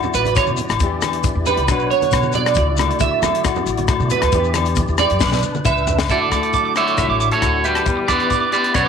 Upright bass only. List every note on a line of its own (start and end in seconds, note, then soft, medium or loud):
0.14 0.34 A1 medium
0.48 0.58 B2 medium
0.70 0.80 A1 medium
0.80 1.32 E2 loud
1.35 1.56 E2 medium
1.57 1.69 C#2 medium
1.69 1.89 B1 loud
2.13 2.53 B2 medium
2.57 2.68 D2 loud
2.68 2.88 C#2 medium
3.01 3.11 D2 medium
3.22 3.42 D3 medium
3.66 3.87 A1 medium
4.00 4.10 B2 medium
4.23 4.32 D2 medium
4.33 4.84 E2 loud
4.89 5.09 E2 medium
5.11 5.23 F#2 medium
5.21 5.41 B1 medium
5.66 6.06 C#2 medium
6.09 6.30 D2 medium
6.32 6.52 D2 medium
6.98 7.08 C#2 medium
7.09 7.29 A1 medium
7.42 7.83 D2 medium
7.86 8.07 E2 medium
8.09 8.29 E2 medium
8.75 8.85 B1 medium